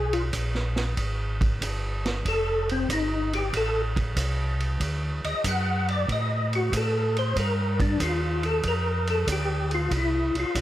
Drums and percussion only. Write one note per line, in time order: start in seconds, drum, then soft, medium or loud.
0.13 ride medium
0.33 kick soft
0.33 hi-hat pedal soft
0.33 ride medium
0.55 snare soft
0.76 snare soft
0.76 ride soft
0.97 kick soft
0.97 ride medium
1.41 kick medium
1.41 ride soft
1.61 kick soft
1.61 hi-hat pedal medium
1.61 ride medium
2.05 snare soft
2.05 ride soft
2.25 kick soft
2.25 ride medium
2.69 ride soft
2.89 kick soft
2.89 hi-hat pedal medium
2.89 ride medium
3.33 ride medium
3.53 kick soft
3.53 ride medium
3.96 kick medium
3.96 ride soft
4.17 kick soft
4.17 hi-hat pedal medium
4.17 ride medium
4.60 ride soft
4.80 kick soft
4.80 ride medium
5.24 ride medium
5.44 kick soft
5.44 hi-hat pedal medium
5.44 ride medium
5.88 ride soft
6.08 kick soft
6.08 ride medium
6.53 ride soft
6.72 kick soft
6.72 hi-hat pedal medium
6.72 ride medium
7.17 ride soft
7.36 kick soft
7.36 ride medium
7.80 kick medium
7.80 ride medium
8.00 kick soft
8.00 hi-hat pedal medium
8.00 ride medium
8.43 ride soft
8.63 kick soft
8.63 ride medium
9.07 ride soft
9.27 kick soft
9.27 hi-hat pedal medium
9.27 ride medium
9.71 ride soft
9.91 kick soft
9.91 ride medium
10.35 ride soft
10.55 kick soft
10.55 hi-hat pedal medium
10.55 ride medium